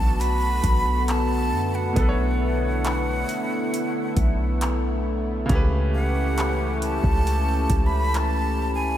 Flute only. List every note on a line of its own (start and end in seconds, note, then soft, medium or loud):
0.00 0.22 A5 loud
0.20 1.10 B5 loud
1.09 1.76 A5 loud
1.75 5.06 F#5 loud
5.95 6.78 F#5 loud
6.83 7.88 A5 loud
7.86 8.17 B5 loud
8.16 8.74 A5 loud
8.75 8.98 G#5 loud